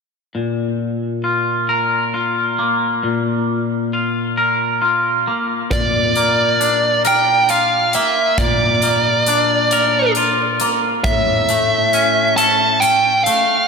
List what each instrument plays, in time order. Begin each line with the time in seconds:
0.35 clean electric guitar A#2
1.24 clean electric guitar F4
1.69 clean electric guitar A#4
2.14 clean electric guitar F4
2.59 clean electric guitar A#3
3.03 clean electric guitar A#2
3.93 clean electric guitar F4
4.37 clean electric guitar A#4
4.82 clean electric guitar F4
5.27 clean electric guitar A#3
5.71 clean electric guitar A#2, lead electric guitar D5, kick, closed hi-hat
6.15 clean electric guitar A#3, closed hi-hat
6.60 clean electric guitar D4, closed hi-hat
7.05 clean electric guitar A#4, lead electric guitar G5, closed hi-hat
7.49 clean electric guitar F4, lead electric guitar F5, closed hi-hat
7.93 clean electric guitar A#3, lead electric guitar E5, closed hi-hat
8.38 clean electric guitar A#2, lead electric guitar D5, kick, closed hi-hat
8.82 clean electric guitar A#3, closed hi-hat
9.26 clean electric guitar D4, closed hi-hat
9.71 clean electric guitar A#4, closed hi-hat
10.15 clean electric guitar F4, closed hi-hat
10.60 clean electric guitar A#3, closed hi-hat
11.04 clean electric guitar A2, lead electric guitar E5, kick, closed hi-hat
11.49 clean electric guitar A3, closed hi-hat
11.93 clean electric guitar C#4, closed hi-hat
12.37 clean electric guitar A4, lead electric guitar A5, closed hi-hat
12.80 lead electric guitar G5, closed hi-hat
13.24 clean electric guitar A3, lead electric guitar F5, closed hi-hat